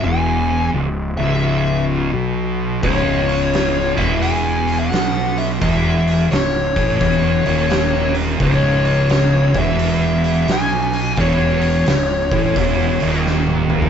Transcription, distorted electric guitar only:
X:1
M:4/4
L:1/8
Q:"Swing" 1/4=86
K:C#m
V:1 name="Distorted electric guitar" clef=bass
E,,2 C,, C,,3 B,,2 | C,,3 E,,3 B,,2 | E,,2 C,, A,, E,, D,,3 | C,,3 E,,3 B,,2 |
E,,2 C,, A,, E,, D,,3 |]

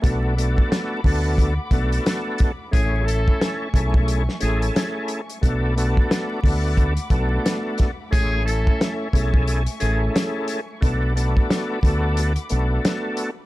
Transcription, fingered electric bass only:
X:1
M:4/4
L:1/8
Q:"Swing 16ths" 1/4=89
K:Bdor
V:1 name="Fingered electric bass" clef=bass
B,,,2 z D,,2 B,,, z2 | A,,,2 z B,,,2 A,,, z2 | B,,,2 z D,,2 B,,, z2 | A,,,2 z B,,,2 A,,, z2 |
B,,,2 z D,,2 B,,, z2 |]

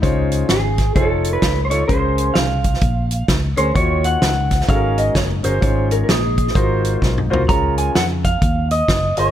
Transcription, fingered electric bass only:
X:1
M:4/4
L:1/8
Q:"Swing" 1/4=129
K:Db
V:1 name="Fingered electric bass" clef=bass
D,,2 A,,,2 F,,,2 ^C,,2 | D,,2 C,,2 B,,,2 D,, =D,, | E,,2 D,,2 A,,,2 G,,, =G,,, | A,,,2 B,,,2 A,,,2 _C,, =C,, |
D,,2 F,,2 E,,2 G,,, =G,,, |]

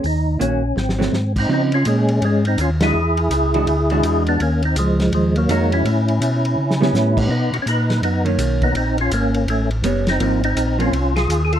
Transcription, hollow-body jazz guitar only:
X:1
M:4/4
L:1/8
Q:"Swing" 1/4=165
K:Dblyd
V:1 name="Hollow-body jazz guitar"
z2 [E,B,D_G] z2 [_G,=A,C] z2 | [F,CE] z6 [=E,A,=D_G] | z3 [=E,^G,=D^F] z [E,G,DF]3 | z6 [E,A,D_G]2 |
z4 z [G,=B,^C]3 | z4 z [^D,^A,^C]3 | z6 [G,=B,^C] z | [F,B,C] z2 [F,B,C] z4 |]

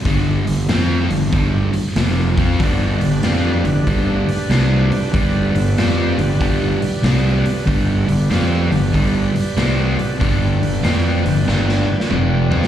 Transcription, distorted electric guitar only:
X:1
M:4/4
L:1/8
Q:"Swing" 1/4=95
K:Gmix
V:1 name="Distorted electric guitar" clef=bass
[G,,D,G,] [G,,D,] [F,CF] [G,,D,] [G,,D,G,] z [F,,C,F,] [F,CF] | [G,,D,G,] [G,,D,] [F,CF] [G,,D,] [G,,D,G,] z [C,G,C] z | [G,,D,G,] [G,,D,] [F,CF] [G,,D,] [G,,D,G,] z [C,G,C] z | [G,,D,G,] [G,,D,] [F,CF] [G,,D,] [G,,D,G,] z [C,G,C] z |
[G,,D,G,] [G,,D,] [F,CF] [G,,D,] [G,,D,G,] z [F,,C,F,] [F,CF] |]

